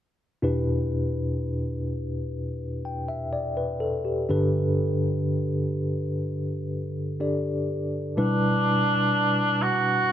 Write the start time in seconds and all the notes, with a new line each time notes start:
0.42 E2 B2 D4 E4 G4 B4
2.85 G5
3.08 E5
3.33 D5
3.57 B4
3.80 A4
4.05 G4
4.29 G2 D3 D4 G4 A4 B4
7.20 D4 G4 A4 D5
8.17 B2 G3 D4 E4 B4
9.62 F#4